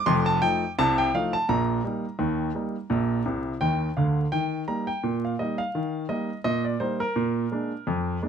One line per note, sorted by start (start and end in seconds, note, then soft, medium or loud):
0.06 0.37 F1 medium
0.06 0.37 F2 loud
0.06 0.26 C6 loud
0.26 0.43 A5 loud
0.42 0.62 F3 medium
0.42 0.62 A3 medium
0.42 0.62 D#4 medium
0.42 0.71 G5 loud
0.78 1.09 C2 medium
0.78 1.09 C3 medium
0.78 0.98 A5 loud
0.98 1.14 G5 medium
1.14 1.34 F3 soft
1.14 1.34 A3 soft
1.14 1.34 D#4 medium
1.14 1.33 F5 medium
1.33 1.49 A5 medium
1.49 1.79 A#1 medium
1.49 1.79 A#2 medium
1.49 3.58 A#5 medium
1.84 2.04 G3 soft
1.84 2.04 A#3 soft
1.84 2.04 D#4 soft
2.19 2.50 D#2 medium
2.19 2.50 D#3 medium
2.55 2.75 G3 soft
2.55 2.75 A#3 soft
2.55 2.75 D#4 soft
2.90 3.21 A#1 medium
2.90 3.20 A#2 medium
3.26 3.52 C2 medium
3.26 3.52 C3 medium
3.61 3.88 D#2 medium
3.61 3.88 D#3 medium
3.61 3.89 G5 medium
3.97 4.24 D2 medium
3.97 4.24 D3 medium
3.97 4.25 F5 medium
4.32 4.63 D#3 medium
4.32 4.61 G5 medium
4.68 4.87 G3 soft
4.68 4.88 A#3 soft
4.68 4.88 D#4 soft
4.68 4.87 A#5 medium
4.87 5.15 G5 medium
5.03 5.33 A#2 medium
5.25 5.40 F5 medium
5.39 5.59 G3 soft
5.39 5.59 A#3 soft
5.39 5.60 D#4 soft
5.39 5.58 D#5 medium
5.58 6.07 F5 medium
5.75 6.04 D#3 medium
6.09 6.28 G3 soft
6.09 6.29 A#3 soft
6.09 6.29 D#4 soft
6.09 6.37 D#5 medium
6.44 6.75 A#2 medium
6.44 6.64 D#5 medium
6.64 6.80 D5 medium
6.80 6.99 G3 soft
6.80 7.00 A#3 soft
6.80 7.00 D#4 soft
6.80 6.99 C5 medium
7.00 8.29 A#4 medium
7.16 7.45 A#2 medium
7.52 7.71 G#3 soft
7.52 7.71 A#3 soft
7.52 7.71 D4 soft
7.87 8.16 F2 medium
8.22 8.29 G#3 soft
8.22 8.29 A#3 soft
8.22 8.29 D4 soft